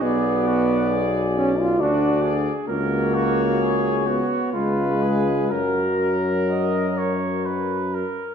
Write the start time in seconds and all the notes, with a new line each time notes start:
0.01 B1 B3 F#4 G#4 D5
0.48 F#4
0.91 G#4
1.37 C#4
1.60 F4
1.79 D2 D4 F#4 D5
2.23 G#4
2.68 C#2 A#3 F#4 A#4 C#5
3.15 F#4
3.61 G#4
4.07 B3 F#4
4.53 C#2 G#3 F4 B4
5.02 G#4
5.51 F#2 F#3 F#4 A#4
6.50 D#5
6.98 C#5
7.46 B4
7.94 A#4